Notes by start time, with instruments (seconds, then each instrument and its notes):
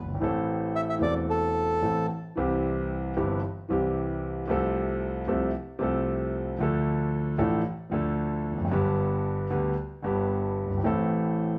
0.01 grand piano F#1
0.07 grand piano G1
0.14 grand piano G#1
0.20 grand piano A1 A2 E3 A3 C4 A4
0.76 bandoneon E5
0.90 bandoneon E5
0.98 grand piano E1 E2 E3 A3 C4
1.03 grand piano A4, bandoneon D5
1.30 bandoneon A4
1.82 grand piano A1 A2 E3 A3 C4 A4
2.35 grand piano C2 C3 E3 G3 C4 G4
3.17 grand piano G1 G2 E3 G3 C4 G4
3.69 grand piano C2 C3 E3 G3 C4 G4
4.47 grand piano C2 C3 F3 A3 C4 A4
5.28 grand piano C2 C3 F3 A3 C4 A4
5.79 grand piano C2 C3 F3 A3 C4 A4
6.59 grand piano D2 D3 F3 A3 D4
6.63 grand piano A4
7.38 grand piano A1 A2 F3 A3 D4 A4
7.90 grand piano D2 D3 F3 A3 D4
7.94 grand piano A4
8.52 grand piano E2
8.58 grand piano F2
8.65 grand piano F#2
8.69 grand piano G1 G2 D3 G3 B3 G4
9.50 grand piano D2 D3 G3 B3 G4
10.02 grand piano G1 G2 D3 G3 B3 G4
10.65 grand piano F#1
10.70 grand piano G1
10.77 grand piano G#1
10.83 grand piano A1 A2 E3 A3 C4 A4